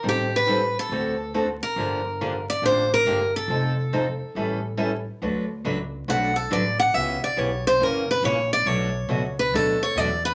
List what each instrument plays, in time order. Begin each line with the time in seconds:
0.03 upright bass A1, steel-string acoustic guitar D#3 G3 C4 G4 A4
0.09 steel-string acoustic guitar G4
0.36 steel-string acoustic guitar B4
0.46 steel-string acoustic guitar D#3 G3 C4 G4 A4
0.79 steel-string acoustic guitar A4
0.89 upright bass D2, steel-string acoustic guitar D3 A3 C4 F#4 A4
1.34 steel-string acoustic guitar D3 A3 C4 F#4 A4
1.63 steel-string acoustic guitar A#4
1.76 upright bass G1, steel-string acoustic guitar D3 F3 A#3 D4 G4
2.21 steel-string acoustic guitar D3 F3 A#3 D4 G4
2.50 steel-string acoustic guitar D5
2.62 upright bass A1, steel-string acoustic guitar D3 F3 A#3 D4 G4 C5
2.94 steel-string acoustic guitar A#4
3.05 upright bass G1, steel-string acoustic guitar D3 F3 A#3 D4 G4
3.36 steel-string acoustic guitar A4
3.48 upright bass F1, steel-string acoustic guitar F3 C4 D#4 A4
3.93 steel-string acoustic guitar F3 C4 D#4 A4
4.35 upright bass A1, steel-string acoustic guitar E3 G3 C#4 E4 A4
4.77 steel-string acoustic guitar E3 G3 C#4 E4 A4
5.22 upright bass D2, steel-string acoustic guitar D3 F#3 A3 D4 F#4 B4
5.64 upright bass C#2, steel-string acoustic guitar D3 F#3 A3 D4 F#4 B4
6.08 upright bass B1, steel-string acoustic guitar D3 F#3 A3 D4 F#4 B4 F#5
6.36 steel-string acoustic guitar A4
6.50 upright bass A1, steel-string acoustic guitar D3 F#3 A3 D4 F#4 B4 D5
6.79 steel-string acoustic guitar F#5
6.93 upright bass C#2, steel-string acoustic guitar C#3 E3 B3 C#4 G4 E5
7.22 steel-string acoustic guitar D5, muted upright bass stroke
7.37 upright bass B1, steel-string acoustic guitar C#3 E3 B3 C#4 G4 C#5
7.67 steel-string acoustic guitar C5
7.79 upright bass F#1, steel-string acoustic guitar C#3 E3 A#3 C#4 F#4 A#4
8.11 steel-string acoustic guitar B4
8.23 upright bass A#1, steel-string acoustic guitar C#3 E3 A#3 C#4 F#4 C#5
8.53 steel-string acoustic guitar D5
8.66 upright bass B1, steel-string acoustic guitar B2 F#3 A3 D4 F#4 C#5
9.09 upright bass C#2, steel-string acoustic guitar B2 F#3 A3 D4 F#4
9.39 steel-string acoustic guitar B4
9.51 upright bass D2, steel-string acoustic guitar B2 F#3 A3 D4 F#4 A4
9.83 steel-string acoustic guitar C#5
9.96 upright bass E2, steel-string acoustic guitar B2 F#3 A3 D4 F#4 D5
10.25 steel-string acoustic guitar B4